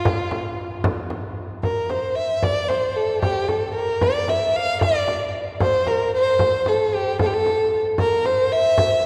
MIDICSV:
0, 0, Header, 1, 3, 480
1, 0, Start_track
1, 0, Tempo, 529101
1, 45, Time_signature, 6, 3, 24, 8
1, 8218, End_track
2, 0, Start_track
2, 0, Title_t, "Violin"
2, 0, Program_c, 0, 40
2, 0, Note_on_c, 0, 65, 93
2, 828, Note_off_c, 0, 65, 0
2, 1487, Note_on_c, 0, 70, 78
2, 1722, Note_on_c, 0, 72, 79
2, 1736, Note_off_c, 0, 70, 0
2, 1957, Note_on_c, 0, 76, 82
2, 1971, Note_off_c, 0, 72, 0
2, 2207, Note_on_c, 0, 74, 94
2, 2221, Note_off_c, 0, 76, 0
2, 2437, Note_on_c, 0, 72, 82
2, 2451, Note_off_c, 0, 74, 0
2, 2682, Note_on_c, 0, 69, 83
2, 2696, Note_off_c, 0, 72, 0
2, 2919, Note_off_c, 0, 69, 0
2, 2924, Note_on_c, 0, 67, 87
2, 3161, Note_on_c, 0, 69, 77
2, 3175, Note_off_c, 0, 67, 0
2, 3394, Note_off_c, 0, 69, 0
2, 3399, Note_on_c, 0, 70, 83
2, 3651, Note_on_c, 0, 74, 95
2, 3665, Note_off_c, 0, 70, 0
2, 3901, Note_on_c, 0, 76, 86
2, 3914, Note_off_c, 0, 74, 0
2, 4136, Note_on_c, 0, 77, 99
2, 4149, Note_off_c, 0, 76, 0
2, 4371, Note_off_c, 0, 77, 0
2, 4375, Note_on_c, 0, 74, 92
2, 4818, Note_off_c, 0, 74, 0
2, 5099, Note_on_c, 0, 72, 94
2, 5331, Note_on_c, 0, 70, 81
2, 5345, Note_off_c, 0, 72, 0
2, 5569, Note_off_c, 0, 70, 0
2, 5576, Note_on_c, 0, 72, 102
2, 6062, Note_on_c, 0, 69, 87
2, 6076, Note_off_c, 0, 72, 0
2, 6305, Note_on_c, 0, 67, 83
2, 6319, Note_off_c, 0, 69, 0
2, 6526, Note_off_c, 0, 67, 0
2, 6532, Note_on_c, 0, 69, 96
2, 6590, Note_on_c, 0, 67, 78
2, 6604, Note_off_c, 0, 69, 0
2, 6656, Note_on_c, 0, 69, 91
2, 6669, Note_off_c, 0, 67, 0
2, 7069, Note_off_c, 0, 69, 0
2, 7256, Note_on_c, 0, 70, 96
2, 7494, Note_on_c, 0, 72, 94
2, 7507, Note_off_c, 0, 70, 0
2, 7730, Note_on_c, 0, 76, 106
2, 7744, Note_off_c, 0, 72, 0
2, 8218, Note_off_c, 0, 76, 0
2, 8218, End_track
3, 0, Start_track
3, 0, Title_t, "Frame drum"
3, 47, Note_on_c, 9, 64, 105
3, 138, Note_off_c, 9, 64, 0
3, 283, Note_on_c, 9, 64, 71
3, 374, Note_off_c, 9, 64, 0
3, 763, Note_on_c, 9, 64, 108
3, 853, Note_off_c, 9, 64, 0
3, 1000, Note_on_c, 9, 64, 70
3, 1091, Note_off_c, 9, 64, 0
3, 1481, Note_on_c, 9, 64, 77
3, 1572, Note_off_c, 9, 64, 0
3, 1720, Note_on_c, 9, 64, 63
3, 1810, Note_off_c, 9, 64, 0
3, 2201, Note_on_c, 9, 64, 86
3, 2291, Note_off_c, 9, 64, 0
3, 2446, Note_on_c, 9, 64, 67
3, 2536, Note_off_c, 9, 64, 0
3, 2925, Note_on_c, 9, 64, 83
3, 3016, Note_off_c, 9, 64, 0
3, 3161, Note_on_c, 9, 64, 67
3, 3251, Note_off_c, 9, 64, 0
3, 3641, Note_on_c, 9, 64, 93
3, 3732, Note_off_c, 9, 64, 0
3, 3884, Note_on_c, 9, 64, 70
3, 3974, Note_off_c, 9, 64, 0
3, 4365, Note_on_c, 9, 64, 89
3, 4455, Note_off_c, 9, 64, 0
3, 4605, Note_on_c, 9, 64, 65
3, 4696, Note_off_c, 9, 64, 0
3, 5084, Note_on_c, 9, 64, 90
3, 5175, Note_off_c, 9, 64, 0
3, 5320, Note_on_c, 9, 64, 66
3, 5411, Note_off_c, 9, 64, 0
3, 5799, Note_on_c, 9, 64, 85
3, 5890, Note_off_c, 9, 64, 0
3, 6043, Note_on_c, 9, 64, 67
3, 6133, Note_off_c, 9, 64, 0
3, 6526, Note_on_c, 9, 64, 89
3, 6617, Note_off_c, 9, 64, 0
3, 6766, Note_on_c, 9, 64, 65
3, 6856, Note_off_c, 9, 64, 0
3, 7241, Note_on_c, 9, 64, 86
3, 7331, Note_off_c, 9, 64, 0
3, 7482, Note_on_c, 9, 64, 61
3, 7573, Note_off_c, 9, 64, 0
3, 7962, Note_on_c, 9, 64, 95
3, 8053, Note_off_c, 9, 64, 0
3, 8218, End_track
0, 0, End_of_file